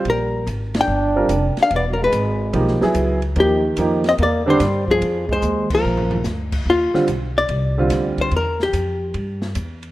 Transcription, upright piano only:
X:1
M:4/4
L:1/8
Q:"Swing" 1/4=145
K:Eb
V:1 name="Upright piano"
z4 z [G,CFB] z2 | z4 [F,B,EG] [_G,=B,=E^G]2 z | [F,B,EG] z [F,B,EG] z2 [D,G,CD] z2 | z8 |
z [D,G,CF] z3 [D,G,CF]3 | z8 |]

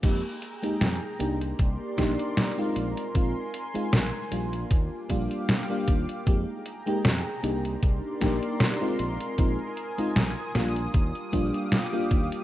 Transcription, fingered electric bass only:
X:1
M:4/4
L:1/8
Q:"Swing 16ths" 1/4=77
K:Bbmix
V:1 name="Fingered electric bass" clef=bass
F,, z F,, C,, C,, B,,, z B,,, | B,,, z B,,, B,,, E,, B,,, z E,, | F,, z F,, C,, C,, B,,, z B,,, | B,,, z B,,, B,,, E,, B,,, z E,, |]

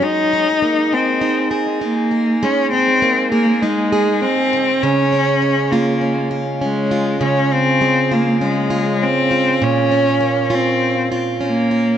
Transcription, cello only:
X:1
M:4/4
L:1/8
Q:"Swing 16ths" 1/4=100
K:Abmix
V:1 name="Cello"
E3 C2 z B,2 | D C2 B, A,2 C2 | D3 B,2 z A,2 | D C2 B, A,2 C2 |
D3 C2 z B,2 |]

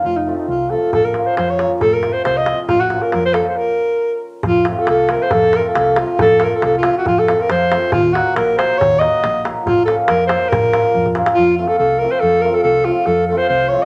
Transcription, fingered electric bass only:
X:1
M:2/4
L:1/8
Q:"Swing 16ths" 1/4=138
K:Fphr
V:1 name="Fingered electric bass" clef=bass
F,,,2 C,,2 | B,,,2 F,,2 | F,,,2 C,,2 | B,,,2 F,,2 |
z4 | F,,2 C,,2 | F,,2 C,,2 | F,,2 C,,2 |
F,,2 F,,2 | E,,2 B,,,2 | E,,2 B,,,2 | B,,,2 F,,2 |
B,,,2 F,,2 | F,,2 C,,2 | F,,2 C,,2 | F,,2 C,,2 |]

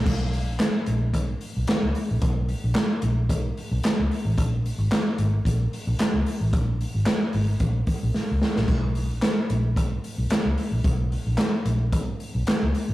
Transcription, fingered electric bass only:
X:1
M:4/4
L:1/16
Q:"Swing 16ths" 1/4=111
K:Bbm
V:1 name="Fingered electric bass" clef=bass
=B,,,3 _B,,, z2 B,,,2 =B,,,2 z B,,, z ^C,, z _B,,, | =B,,,3 _B,,, z2 B,,,2 =B,,,2 z B,,, z ^C,, z =A,,, | B,,,3 A,,, z2 A,,,2 B,,,2 z B,,, z D,, z =A,,, | B,,,3 A,,, z2 A,,,2 B,,,2 z B,,, z D,, z B,,, |
=B,,,3 _B,,, z2 B,,,2 =B,,,2 z B,,, z ^C,, z _B,,, | =B,,,3 _B,,, z2 B,,,2 =B,,,2 z B,,, z ^C,, z =A,,, |]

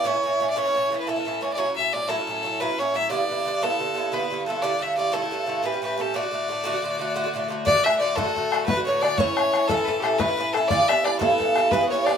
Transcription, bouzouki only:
X:1
M:9/8
L:1/16
Q:3/8=118
K:D
V:1 name="Bouzouki"
[A,,E,CE] [E,CE] [A,,E,CE]2 [A,,E,CE]2 [A,,E,CE] [E,CE] [A,,E,CE]2 [A,,E,CE]2 [A,,E,CE] [E,CE] [A,,E,CE]2 [A,,E,CE]2 | [A,,F,CE] [F,CE] [A,,F,CE]2 [A,,F,CE]2 [A,,F,CE] [F,CE] [A,,F,CE]2 [A,,F,CE]2 [A,,F,CE] [F,CE] [A,,F,CE]2 [A,,F,CE]2 | [G,,D,B,E] [D,B,E] [G,,D,B,E]2 [G,,D,B,E]2 [G,,D,B,E] [D,B,E] [G,,D,B,E]2 [G,,D,B,E]2 [G,,D,B,E] [D,B,E] [G,,D,B,E]2 [G,,D,B,E]2 | [G,,D,A,E] [D,A,E] [G,,D,A,E]2 [G,,D,A,E]2 [G,,D,A,E] [D,A,E] [G,,D,A,E]2 [G,,D,A,E]2 [A,,E,CG] [E,CG] [A,,E,CG]2 [A,,E,CG]2 |
[A,,D,A,F] [D,A,F] [A,,D,A,F]2 [A,,D,A,F]2 [A,,D,A,F] [D,A,F] [A,,D,A,F]2 [A,,D,A,F]2 [A,,D,A,F] [D,A,F] [A,,D,A,F]2 [A,,D,A,F]2 | [A,,D,A,F] [D,A,F] [A,,D,A,F]2 [A,,D,A,F]2 [A,,D,A,F] [D,A,F] [A,,D,A,F]2 [A,,D,A,F]2 [A,,D,A,F] [D,A,F] [A,,D,A,F]2 [A,,D,A,F]2 | [A,,E,CE] [E,CE] [A,,E,CE]2 [A,,E,CE]2 [A,,E,CE] [E,CE] [A,,E,CE]2 [A,,E,CE]2 [A,,E,CE] [E,CE] [A,,E,CE]2 [A,,E,CE]2 | [G,,E,B,E] [E,B,E] [G,,E,B,E]2 [G,,E,B,E]2 [G,,E,B,E] [E,B,E] [G,,E,B,E]2 [G,,E,B,E]2 [G,,E,B,E] [E,B,E] [G,,E,B,E]2 [G,,E,B,E]2 |]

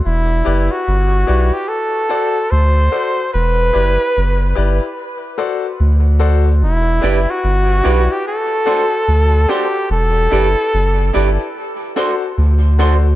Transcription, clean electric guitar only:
X:1
M:4/4
L:1/8
Q:"Swing 16ths" 1/4=73
K:Em
V:1 name="Clean electric guitar"
z8 | z8 | z [DGB] z [DGB] z [DFc] z [DFc] | z [DGB] z [DGB] z [DFc] z [DFc] |]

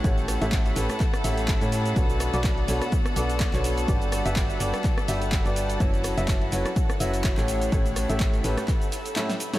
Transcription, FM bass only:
X:1
M:4/4
L:1/16
Q:"Swing 16ths" 1/4=125
K:Amix
V:1 name="FM bass" clef=bass
A,,,3 A,,,3 A,,, z3 A,,,3 A,,3 | B,,,3 B,,,3 B,,, z3 B,,,3 B,,,3 | G,,,3 G,,,3 G,,, z3 G,,,3 G,,,3 | F,,,3 F,,,3 F,,, z3 F,,,3 A,,,3 |
A,,,3 A,,,3 A,,, z8 z |]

